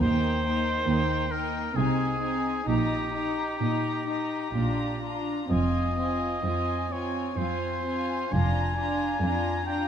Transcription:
0.01 0.75 D#2 soft
0.01 0.43 A#3 soft
0.01 0.44 D#4 soft
0.01 1.33 C5 medium
0.01 0.44 G5 soft
0.45 0.87 A#3 soft
0.45 0.86 D#4 soft
0.45 0.88 G5 soft
0.87 1.63 D#2 soft
0.87 1.30 A#3 soft
0.87 1.29 D#4 soft
0.87 1.31 G5 soft
1.30 1.75 A#3 soft
1.30 1.74 D#4 soft
1.30 1.78 A#4 medium
1.30 1.75 G5 soft
1.75 2.54 C2 soft
1.75 2.54 C3 soft
1.75 2.19 C4 soft
1.75 2.19 D#4 soft
1.75 2.68 G#4 soft
1.75 2.21 G#5 soft
2.20 2.66 C4 soft
2.20 2.66 D#4 soft
2.20 2.67 G#5 soft
2.67 3.48 A#1 soft
2.67 3.47 A#2 soft
2.67 3.13 D#4 soft
2.67 4.99 G4 soft
2.67 3.14 A#5 soft
3.14 3.60 D#4 soft
3.14 3.60 A#5 soft
3.61 4.42 A#2 soft
3.61 4.05 D#4 soft
3.61 4.07 D#4 soft
3.61 4.07 A#5 soft
4.06 4.53 D#4 soft
4.06 4.54 D#4 soft
4.06 4.54 A#5 soft
4.54 5.37 A#1 soft
4.54 5.38 A#2 soft
4.54 5.02 D4 soft
4.54 5.01 F4 soft
4.54 5.03 A#5 soft
5.03 5.50 D4 soft
5.03 5.49 F4 soft
5.03 5.50 A#5 soft
5.50 6.31 F1 soft
5.50 6.31 F2 soft
5.50 5.96 C4 soft
5.50 5.97 F4 soft
5.50 6.93 D#5 soft
5.50 5.97 G#5 soft
5.98 6.44 C4 soft
5.98 6.44 F4 soft
5.98 6.44 G#5 soft
6.44 7.24 F2 soft
6.44 6.90 C4 soft
6.44 6.90 F4 soft
6.44 6.91 G#5 soft
6.91 7.35 C4 soft
6.91 7.36 F4 soft
6.91 7.38 C#5 soft
6.91 7.38 G#5 soft
7.36 8.20 F2 soft
7.36 7.83 C4 soft
7.36 7.84 F4 soft
7.36 8.34 C5 soft
7.40 7.86 G#5 soft
7.84 8.32 C4 soft
7.84 8.32 F4 soft
7.88 8.34 G#5 soft
8.32 9.10 F1 soft
8.32 9.09 F2 soft
8.32 8.76 D4 soft
8.32 8.77 F4 soft
8.32 9.65 G#5 medium
8.32 8.78 A#5 soft
8.77 9.21 D4 soft
8.77 9.21 F4 soft
8.77 9.22 A#5 soft
9.22 9.88 F2 soft
9.22 9.64 D4 soft
9.22 9.66 F4 soft
9.22 9.66 A#5 soft
9.65 9.88 D4 soft
9.65 9.88 F4 soft
9.65 9.88 G5 soft
9.65 9.88 A#5 soft

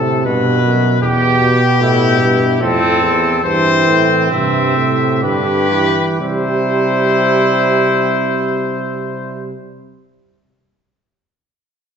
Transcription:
0.00 0.24 A2 medium
0.00 0.27 C3 loud
0.00 0.24 A4 medium
0.25 0.62 G2 medium
0.25 1.03 B2 loud
0.25 1.01 B4 loud
0.63 1.02 F#2 medium
1.02 1.40 E2 medium
1.02 2.63 B2 loud
1.02 2.58 G4 loud
1.02 1.78 G4 loud
1.41 1.80 B2 medium
1.81 2.22 A2 loud
1.81 2.60 E4 loud
2.21 2.61 G2 medium
2.61 3.04 F2 loud
2.61 3.15 A2 medium
2.61 3.43 C4 loud
2.61 3.43 A4 loud
3.02 3.43 E2 medium
3.44 3.86 G2 medium
3.44 4.28 E3 loud
3.44 5.19 C4 loud
3.44 4.30 C5 loud
3.86 4.30 A2 medium
4.31 4.76 G2 medium
4.31 5.22 C3 loud
4.31 5.21 E5 medium
4.77 5.24 A2 medium
5.22 6.03 G2 loud
5.22 5.70 D3 medium
5.22 6.18 G4 loud
5.22 6.04 B4 loud
5.71 6.20 E3 medium
6.20 9.56 C3 medium
6.20 9.56 G3 loud
6.20 9.57 E4 loud
6.20 9.57 C5 loud

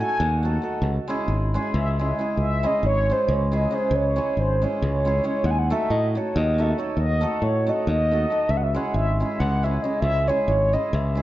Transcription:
0.00 0.16 A3 medium
0.00 0.16 D#4 soft
0.00 0.16 F#4 medium
0.00 0.17 A4 medium
0.00 0.35 G#5 loud
0.20 0.57 D#2 loud
0.35 0.41 G#5 medium
0.40 0.59 A3 medium
0.40 1.07 F#5 medium
0.44 0.60 D#4 medium
0.44 0.60 F#4 soft
0.44 0.60 A4 medium
0.62 0.78 A3 medium
0.62 0.79 D#4 soft
0.62 0.79 F#4 soft
0.62 0.79 A4 medium
0.82 0.98 C#2 loud
1.08 1.53 G#3 medium
1.08 1.25 C#4 medium
1.08 1.25 E4 medium
1.08 1.26 G#4 medium
1.28 1.56 G#1 medium
1.54 1.98 G#3 medium
1.54 1.71 C#4 medium
1.54 1.71 E4 medium
1.54 1.71 G#4 medium
1.73 2.11 C#2 loud
1.73 1.95 E5 loud
1.99 2.17 G#3 medium
1.99 2.15 C#4 soft
1.99 2.15 E4 soft
1.99 2.15 G#4 medium
1.99 2.17 E5 medium
2.19 2.42 G#3 soft
2.19 2.34 C#4 soft
2.19 2.34 E4 medium
2.19 2.35 G#4 medium
2.37 2.65 C#2 medium
2.37 2.68 E5 loud
2.63 3.08 G#3 medium
2.63 2.79 C#4 medium
2.63 2.79 E4 medium
2.63 2.80 G#4 medium
2.63 2.85 D#5 loud
2.83 3.10 G#1 medium
2.83 3.14 C#5 loud
3.10 3.50 G#3 medium
3.10 3.26 C#4 soft
3.10 3.26 E4 medium
3.10 3.26 G#4 medium
3.10 3.34 C5 loud
3.28 3.66 C#2 loud
3.28 3.54 C#5 medium
3.52 3.69 G#3 medium
3.52 3.67 C#4 soft
3.52 3.67 E4 medium
3.52 3.68 G#4 medium
3.56 3.76 D#5 medium
3.71 4.15 G#3 medium
3.71 3.86 C#4 medium
3.71 3.87 E4 medium
3.71 3.87 G#4 medium
3.71 3.96 C5 medium
3.91 4.18 C#2 loud
3.91 4.41 C#5 loud
4.16 4.60 G#3 medium
4.16 4.32 C#4 medium
4.16 4.33 E4 medium
4.16 4.33 G#4 medium
4.37 4.64 G#1 medium
4.37 4.65 C5 loud
4.62 5.04 G#3 medium
4.62 4.78 C#4 medium
4.62 4.79 E4 soft
4.62 4.79 G#4 medium
4.62 4.83 C#5 medium
4.82 5.19 C#2 loud
4.82 5.47 C#5 loud
5.05 5.22 G#3 medium
5.05 5.21 C#4 soft
5.05 5.21 E4 medium
5.05 5.22 G#4 medium
5.24 5.49 G#3 medium
5.24 5.40 C#4 medium
5.24 5.40 E4 medium
5.24 5.40 G#4 medium
5.44 5.71 D#2 loud
5.44 5.52 F#5 loud
5.51 5.60 G#5 loud
5.59 5.74 F#5 loud
5.70 5.86 A3 medium
5.70 5.86 D#4 medium
5.70 5.86 F#4 medium
5.70 5.87 A4 medium
5.70 5.92 E5 loud
5.90 6.17 A2 medium
5.90 6.18 D#5 loud
6.15 6.31 A3 medium
6.15 6.31 D#4 medium
6.15 6.32 F#4 medium
6.15 6.32 A4 medium
6.15 6.38 C#5 medium
6.36 6.72 D#2 loud
6.36 6.62 D#5 loud
6.58 6.74 A3 medium
6.58 6.74 D#4 medium
6.58 6.74 F#4 medium
6.58 6.74 A4 medium
6.58 6.65 E5 medium
6.64 6.71 D#5 medium
6.70 6.80 E5 medium
6.78 6.93 A3 soft
6.78 6.93 D#4 medium
6.78 6.93 F#4 medium
6.78 6.94 A4 medium
6.78 6.96 C#5 medium
6.97 7.24 D#2 medium
6.97 7.39 D#5 loud
7.21 7.38 A3 medium
7.21 7.38 D#4 medium
7.21 7.38 F#4 medium
7.21 7.39 A4 medium
7.42 7.69 A2 medium
7.42 7.71 C#5 loud
7.67 7.83 A3 medium
7.67 7.83 D#4 medium
7.67 7.84 F#4 soft
7.67 7.84 A4 medium
7.67 7.89 D#5 medium
7.87 8.24 D#2 loud
7.87 8.52 D#5 loud
8.11 8.26 A3 medium
8.11 8.27 D#4 soft
8.11 8.27 F#4 medium
8.11 8.27 A4 medium
8.30 8.45 A3 soft
8.30 8.46 D#4 soft
8.30 8.46 F#4 medium
8.30 8.46 A4 medium
8.49 8.77 C#2 loud
8.49 8.59 E5 loud
8.57 8.65 F#5 medium
8.63 8.78 E5 loud
8.74 9.19 G#3 medium
8.74 8.91 C#4 medium
8.74 8.92 E4 medium
8.74 8.92 G#4 medium
8.74 8.95 F#5 loud
8.94 9.22 G#1 medium
8.94 9.19 E5 loud
9.20 9.62 G#3 medium
9.20 9.37 C#4 soft
9.20 9.37 E4 medium
9.20 9.37 G#4 medium
9.20 9.41 E5 loud
9.40 9.77 C#2 loud
9.40 9.65 F#5 loud
9.63 9.83 G#3 medium
9.63 9.79 C#4 medium
9.63 9.80 E4 medium
9.63 9.80 G#4 medium
9.63 9.84 E5 loud
9.82 10.26 G#3 medium
9.82 9.99 C#4 medium
9.82 9.99 E4 medium
9.82 9.99 G#4 medium
9.82 10.00 D#5 medium
10.00 10.30 C#2 loud
10.00 10.29 E5 loud
10.28 10.72 G#3 medium
10.28 10.44 C#4 medium
10.28 10.44 E4 medium
10.28 10.44 G#4 medium
10.28 10.47 C#5 loud
10.48 10.75 G#1 medium
10.48 10.75 C#5 loud
10.73 11.14 G#3 medium
10.73 10.90 C#4 medium
10.73 10.89 E4 medium
10.73 10.90 G#4 medium
10.73 10.96 D#5 medium
10.93 11.22 C#2 loud
10.93 11.22 E5 loud
11.15 11.22 G#3 medium
11.15 11.22 C#4 soft
11.15 11.22 E4 medium
11.15 11.22 G#4 medium

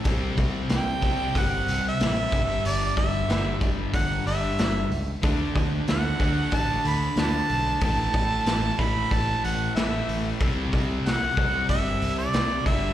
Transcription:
0.04 0.28 C2 medium
0.04 1.00 C3 medium
0.04 1.03 G3 medium
0.04 1.00 C4 medium
0.04 kick medium
0.04 open hi-hat medium
0.37 0.61 C2 medium
0.37 kick medium
0.37 open hi-hat soft
0.69 0.93 C2 medium
0.69 snare medium
0.69 open hi-hat medium
0.77 1.41 G5 medium
1.01 1.26 C2 medium
1.01 1.97 C3 medium
1.01 1.98 G3 medium
1.01 1.97 C4 medium
1.01 kick medium
1.01 open hi-hat soft
1.35 1.59 G1 medium
1.35 1.85 F#5 medium
1.35 kick medium
1.35 open hi-hat medium
1.68 1.91 C2 medium
1.68 open hi-hat soft
1.88 2.63 E5 medium
1.98 2.24 A1 medium
1.98 2.29 C3 medium
1.98 2.30 G3 medium
1.98 2.31 C4 medium
1.98 snare medium
1.98 open hi-hat medium
2.31 2.56 G1 medium
2.31 3.27 G2 medium
2.31 3.28 D3 medium
2.31 3.28 G3 medium
2.31 kick medium
2.31 open hi-hat soft
2.65 2.89 G1 medium
2.65 2.95 D5 medium
2.65 open hi-hat medium
2.97 3.20 G1 medium
2.97 3.58 E5 medium
2.97 kick medium
2.97 open hi-hat soft
3.28 3.53 G1 medium
3.28 4.24 G2 medium
3.28 4.24 D3 medium
3.28 4.24 G3 medium
3.28 snare medium
3.28 open hi-hat medium
3.61 3.85 G1 medium
3.61 kick medium
3.61 open hi-hat soft
3.94 4.17 G1 medium
3.94 4.24 F#5 medium
3.94 kick medium
3.94 open hi-hat medium
4.25 4.49 G1 medium
4.25 4.90 G2 medium
4.25 4.89 D3 medium
4.25 4.88 G3 medium
4.25 4.87 E5 medium
4.25 open hi-hat soft
4.58 4.82 G1 medium
4.58 snare medium
4.58 open hi-hat soft
4.91 5.14 C#2 medium
4.91 open hi-hat soft
5.22 5.47 D2 medium
5.22 6.18 D3 medium
5.22 6.21 A3 medium
5.22 6.18 D4 medium
5.22 kick loud
5.22 open hi-hat medium
5.55 5.79 D2 medium
5.55 kick medium
5.55 open hi-hat soft
5.88 6.11 D2 medium
5.88 6.50 F#5 medium
5.88 snare medium
5.88 open hi-hat medium
6.19 6.44 D2 medium
6.19 7.16 D3 medium
6.19 7.16 A3 medium
6.19 7.15 D4 medium
6.19 kick medium
6.19 open hi-hat soft
6.51 6.76 A1 medium
6.51 6.83 A5 medium
6.51 kick medium
6.51 open hi-hat medium
6.85 7.08 D2 medium
6.85 7.22 B5 medium
6.85 open hi-hat soft
7.16 7.40 D2 medium
7.16 7.80 D3 medium
7.16 7.80 A3 medium
7.16 7.81 D4 medium
7.16 snare medium
7.16 open hi-hat medium
7.20 7.83 A5 medium
7.49 7.73 B1 medium
7.49 open hi-hat soft
7.81 8.05 A1 medium
7.81 8.77 A2 medium
7.81 8.81 E3 medium
7.81 8.78 A3 medium
7.81 8.81 A5 medium
7.81 kick loud
7.81 open hi-hat medium
8.14 8.38 A1 medium
8.14 kick medium
8.14 open hi-hat soft
8.46 8.70 A1 medium
8.46 snare medium
8.46 open hi-hat medium
8.79 9.03 A1 medium
8.79 9.75 E3 medium
8.79 9.75 A3 medium
8.79 9.14 B5 medium
8.79 kick medium
8.79 open hi-hat soft
8.83 9.75 A2 medium
9.11 9.35 A1 medium
9.11 9.44 A5 medium
9.11 kick medium
9.11 open hi-hat medium
9.44 9.67 A1 medium
9.44 9.74 F#5 medium
9.44 open hi-hat soft
9.75 10.00 A1 medium
9.75 10.39 A2 medium
9.75 10.40 E3 medium
9.75 10.40 A3 medium
9.75 10.21 E5 medium
9.75 snare medium
9.75 open hi-hat medium
10.08 10.32 A1 medium
10.08 open hi-hat soft
10.40 10.64 C2 medium
10.40 11.35 C3 medium
10.40 11.38 G3 medium
10.40 11.36 C4 medium
10.40 kick medium
10.40 open hi-hat medium
10.73 10.96 C2 medium
10.73 kick medium
10.73 open hi-hat soft
11.05 11.29 C2 medium
11.05 11.66 F#5 medium
11.05 snare medium
11.05 open hi-hat medium
11.37 11.61 C2 medium
11.37 12.33 C3 medium
11.37 12.33 G3 medium
11.37 12.32 C4 medium
11.37 kick medium
11.37 open hi-hat soft
11.69 11.93 G1 medium
11.69 12.15 E5 medium
11.69 kick medium
11.69 open hi-hat medium
12.01 12.26 C2 medium
12.01 open hi-hat soft
12.18 12.63 D5 medium
12.33 12.57 C2 medium
12.33 12.65 C3 medium
12.33 12.66 G3 medium
12.33 12.66 C4 medium
12.33 snare medium
12.33 open hi-hat medium
12.66 12.90 G1 medium
12.66 12.93 G2 medium
12.66 12.93 D3 medium
12.66 12.93 G3 medium
12.66 12.93 E5 medium
12.66 kick medium
12.66 open hi-hat soft

